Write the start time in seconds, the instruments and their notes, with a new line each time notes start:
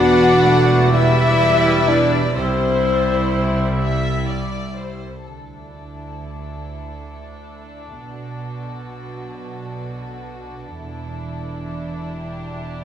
Already playing: double bass section E1, cello section E2, viola section D4, french horn section F#4, violin section B4 F#5, oboe D5, flute section F#5
0.00 viola section B3
0.46 viola section A3
0.92 viola section G3 E4, french horn section E4, violin section B4 E5, flute section E5
1.86 french horn section D4, flute section D5, violin section D5
2.35 double bass section C2, cello section C2, viola section G3 E4, french horn section C4, violin section C5, flute section C5, oboe E5
3.81 violin section E5
4.29 violin section D5
4.78 violin section C5
5.25 cello section D2, double bass section D2, viola section D4, violin section E4 A4
8.02 double bass section B1, cello section B2, violin section F#4
10.76 double bass section E1, cello section E2, viola section D4, violin section E4
12.16 violin section G4